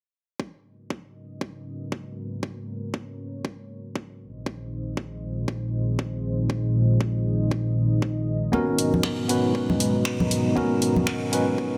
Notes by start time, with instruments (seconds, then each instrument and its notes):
0.40 analog synth pad G#3 C#4 F#4 A#4 B4 D#5, kick
0.90 kick
1.41 kick
1.92 kick
2.43 analog synth pad C#5, kick
2.94 kick
3.45 kick
3.96 kick
4.21 analog synth pad A#2 D#4 F4 G#4 C5 D#5
4.46 kick
4.97 kick
5.48 kick
5.99 kick
6.50 kick
7.01 kick
7.51 kick
8.02 kick
8.52 analog synth pad G#3 B3 F#4 A#5, tine electric piano B3 C#4 F#4 A#4, kick, high conga
8.79 open hi-hat
8.94 low conga
9.03 finger snap, kick
9.28 tine electric piano B3 C#4 F#4 B4, open hi-hat
9.55 kick
9.70 low conga
9.80 open hi-hat
10.05 finger snap, kick
10.20 low conga
10.31 open hi-hat
10.55 tine electric piano B3 C#4 F#4 A#4, kick, high conga
10.82 open hi-hat
10.96 low conga
11.07 finger snap, kick
11.32 tine electric piano B3 C#4 F#4 B4, open hi-hat
11.58 kick